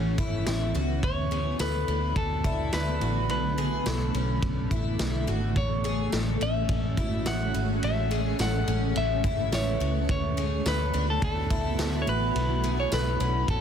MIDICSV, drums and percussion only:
0, 0, Header, 1, 2, 480
1, 0, Start_track
1, 0, Key_signature, 3, "major"
1, 0, Tempo, 566038
1, 875, Time_signature, 4, 2, 24, 8
1, 11540, End_track
2, 0, Start_track
2, 0, Title_t, "Drums"
2, 154, Note_on_c, 9, 36, 98
2, 154, Note_on_c, 9, 51, 49
2, 239, Note_off_c, 9, 36, 0
2, 239, Note_off_c, 9, 51, 0
2, 393, Note_on_c, 9, 51, 74
2, 394, Note_on_c, 9, 38, 121
2, 394, Note_on_c, 9, 54, 70
2, 478, Note_off_c, 9, 51, 0
2, 479, Note_off_c, 9, 38, 0
2, 479, Note_off_c, 9, 54, 0
2, 636, Note_on_c, 9, 51, 39
2, 721, Note_off_c, 9, 51, 0
2, 874, Note_on_c, 9, 36, 109
2, 875, Note_on_c, 9, 51, 65
2, 959, Note_off_c, 9, 36, 0
2, 960, Note_off_c, 9, 51, 0
2, 1117, Note_on_c, 9, 51, 45
2, 1202, Note_off_c, 9, 51, 0
2, 1352, Note_on_c, 9, 54, 70
2, 1354, Note_on_c, 9, 51, 55
2, 1355, Note_on_c, 9, 38, 106
2, 1436, Note_off_c, 9, 54, 0
2, 1439, Note_off_c, 9, 51, 0
2, 1440, Note_off_c, 9, 38, 0
2, 1594, Note_on_c, 9, 51, 41
2, 1679, Note_off_c, 9, 51, 0
2, 1831, Note_on_c, 9, 36, 100
2, 1832, Note_on_c, 9, 51, 65
2, 1916, Note_off_c, 9, 36, 0
2, 1917, Note_off_c, 9, 51, 0
2, 2072, Note_on_c, 9, 51, 50
2, 2073, Note_on_c, 9, 36, 94
2, 2157, Note_off_c, 9, 36, 0
2, 2157, Note_off_c, 9, 51, 0
2, 2311, Note_on_c, 9, 51, 75
2, 2312, Note_on_c, 9, 38, 108
2, 2312, Note_on_c, 9, 54, 72
2, 2396, Note_off_c, 9, 51, 0
2, 2397, Note_off_c, 9, 38, 0
2, 2397, Note_off_c, 9, 54, 0
2, 2554, Note_on_c, 9, 51, 44
2, 2639, Note_off_c, 9, 51, 0
2, 2793, Note_on_c, 9, 51, 62
2, 2878, Note_off_c, 9, 51, 0
2, 3036, Note_on_c, 9, 51, 44
2, 3121, Note_off_c, 9, 51, 0
2, 3272, Note_on_c, 9, 54, 69
2, 3274, Note_on_c, 9, 51, 61
2, 3275, Note_on_c, 9, 38, 108
2, 3357, Note_off_c, 9, 54, 0
2, 3359, Note_off_c, 9, 51, 0
2, 3360, Note_off_c, 9, 38, 0
2, 3514, Note_on_c, 9, 51, 47
2, 3599, Note_off_c, 9, 51, 0
2, 3753, Note_on_c, 9, 36, 98
2, 3753, Note_on_c, 9, 51, 67
2, 3837, Note_off_c, 9, 36, 0
2, 3838, Note_off_c, 9, 51, 0
2, 3992, Note_on_c, 9, 51, 46
2, 3994, Note_on_c, 9, 36, 92
2, 4077, Note_off_c, 9, 51, 0
2, 4079, Note_off_c, 9, 36, 0
2, 4233, Note_on_c, 9, 51, 73
2, 4235, Note_on_c, 9, 38, 121
2, 4235, Note_on_c, 9, 54, 67
2, 4318, Note_off_c, 9, 51, 0
2, 4320, Note_off_c, 9, 38, 0
2, 4320, Note_off_c, 9, 54, 0
2, 4475, Note_on_c, 9, 51, 39
2, 4560, Note_off_c, 9, 51, 0
2, 4715, Note_on_c, 9, 36, 116
2, 4715, Note_on_c, 9, 51, 64
2, 4800, Note_off_c, 9, 36, 0
2, 4800, Note_off_c, 9, 51, 0
2, 4959, Note_on_c, 9, 51, 44
2, 5044, Note_off_c, 9, 51, 0
2, 5193, Note_on_c, 9, 54, 69
2, 5196, Note_on_c, 9, 38, 106
2, 5196, Note_on_c, 9, 51, 59
2, 5278, Note_off_c, 9, 54, 0
2, 5280, Note_off_c, 9, 51, 0
2, 5281, Note_off_c, 9, 38, 0
2, 5435, Note_on_c, 9, 51, 44
2, 5519, Note_off_c, 9, 51, 0
2, 5671, Note_on_c, 9, 51, 70
2, 5673, Note_on_c, 9, 36, 98
2, 5756, Note_off_c, 9, 51, 0
2, 5757, Note_off_c, 9, 36, 0
2, 5912, Note_on_c, 9, 51, 50
2, 5914, Note_on_c, 9, 36, 93
2, 5997, Note_off_c, 9, 51, 0
2, 5999, Note_off_c, 9, 36, 0
2, 6154, Note_on_c, 9, 51, 68
2, 6155, Note_on_c, 9, 38, 118
2, 6155, Note_on_c, 9, 54, 70
2, 6239, Note_off_c, 9, 51, 0
2, 6240, Note_off_c, 9, 38, 0
2, 6240, Note_off_c, 9, 54, 0
2, 6397, Note_on_c, 9, 51, 42
2, 6482, Note_off_c, 9, 51, 0
2, 6637, Note_on_c, 9, 51, 65
2, 6722, Note_off_c, 9, 51, 0
2, 6879, Note_on_c, 9, 51, 49
2, 6964, Note_off_c, 9, 51, 0
2, 7117, Note_on_c, 9, 54, 74
2, 7120, Note_on_c, 9, 38, 115
2, 7120, Note_on_c, 9, 51, 59
2, 7202, Note_off_c, 9, 54, 0
2, 7205, Note_off_c, 9, 38, 0
2, 7205, Note_off_c, 9, 51, 0
2, 7356, Note_on_c, 9, 51, 43
2, 7441, Note_off_c, 9, 51, 0
2, 7595, Note_on_c, 9, 51, 70
2, 7680, Note_off_c, 9, 51, 0
2, 7833, Note_on_c, 9, 51, 51
2, 7836, Note_on_c, 9, 36, 108
2, 7918, Note_off_c, 9, 51, 0
2, 7921, Note_off_c, 9, 36, 0
2, 8076, Note_on_c, 9, 51, 72
2, 8078, Note_on_c, 9, 38, 122
2, 8078, Note_on_c, 9, 54, 70
2, 8161, Note_off_c, 9, 51, 0
2, 8162, Note_off_c, 9, 38, 0
2, 8162, Note_off_c, 9, 54, 0
2, 8320, Note_on_c, 9, 51, 39
2, 8405, Note_off_c, 9, 51, 0
2, 8557, Note_on_c, 9, 36, 114
2, 8559, Note_on_c, 9, 51, 63
2, 8642, Note_off_c, 9, 36, 0
2, 8643, Note_off_c, 9, 51, 0
2, 8800, Note_on_c, 9, 51, 47
2, 8885, Note_off_c, 9, 51, 0
2, 9037, Note_on_c, 9, 54, 76
2, 9039, Note_on_c, 9, 51, 59
2, 9040, Note_on_c, 9, 38, 110
2, 9122, Note_off_c, 9, 54, 0
2, 9124, Note_off_c, 9, 51, 0
2, 9125, Note_off_c, 9, 38, 0
2, 9277, Note_on_c, 9, 51, 46
2, 9362, Note_off_c, 9, 51, 0
2, 9515, Note_on_c, 9, 36, 96
2, 9515, Note_on_c, 9, 51, 70
2, 9600, Note_off_c, 9, 36, 0
2, 9600, Note_off_c, 9, 51, 0
2, 9756, Note_on_c, 9, 36, 106
2, 9756, Note_on_c, 9, 51, 53
2, 9841, Note_off_c, 9, 36, 0
2, 9841, Note_off_c, 9, 51, 0
2, 9995, Note_on_c, 9, 51, 68
2, 9996, Note_on_c, 9, 38, 116
2, 9996, Note_on_c, 9, 54, 68
2, 10080, Note_off_c, 9, 51, 0
2, 10081, Note_off_c, 9, 38, 0
2, 10081, Note_off_c, 9, 54, 0
2, 10238, Note_on_c, 9, 51, 43
2, 10323, Note_off_c, 9, 51, 0
2, 10478, Note_on_c, 9, 51, 66
2, 10563, Note_off_c, 9, 51, 0
2, 10719, Note_on_c, 9, 51, 44
2, 10804, Note_off_c, 9, 51, 0
2, 10954, Note_on_c, 9, 54, 71
2, 10957, Note_on_c, 9, 38, 108
2, 10957, Note_on_c, 9, 51, 57
2, 11039, Note_off_c, 9, 54, 0
2, 11041, Note_off_c, 9, 51, 0
2, 11042, Note_off_c, 9, 38, 0
2, 11196, Note_on_c, 9, 51, 44
2, 11281, Note_off_c, 9, 51, 0
2, 11433, Note_on_c, 9, 36, 101
2, 11433, Note_on_c, 9, 51, 72
2, 11518, Note_off_c, 9, 36, 0
2, 11518, Note_off_c, 9, 51, 0
2, 11540, End_track
0, 0, End_of_file